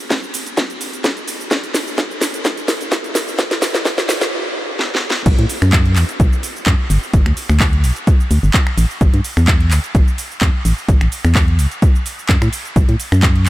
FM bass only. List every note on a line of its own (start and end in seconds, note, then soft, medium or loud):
5.26 5.34 B1 loud
5.39 5.46 A2 medium
5.62 5.98 F#2 medium
5.96 6.05 E2 medium
6.20 6.28 B1 medium
6.67 6.75 F#2 loud
6.90 6.98 G1 medium
7.14 7.22 G1 loud
7.26 7.33 D2 medium
7.50 7.85 D2 medium
7.84 7.92 B1 medium
8.31 8.39 D2 medium
8.43 8.50 G1 loud
8.78 8.86 A1 loud
9.01 9.09 A1 loud
9.14 9.21 G2 medium
9.37 9.73 E2 medium
9.71 9.80 D2 medium
9.95 10.03 A1 medium
10.42 10.50 E2 loud
10.65 10.73 A1 medium
10.89 10.97 A1 loud
11.01 11.08 A1 medium
11.25 11.60 E2 medium
11.59 11.67 C#2 medium
12.29 12.37 F#2 medium
12.42 12.49 A2 medium
12.76 12.84 B1 loud
12.89 12.96 A2 medium
13.12 13.48 F#2 medium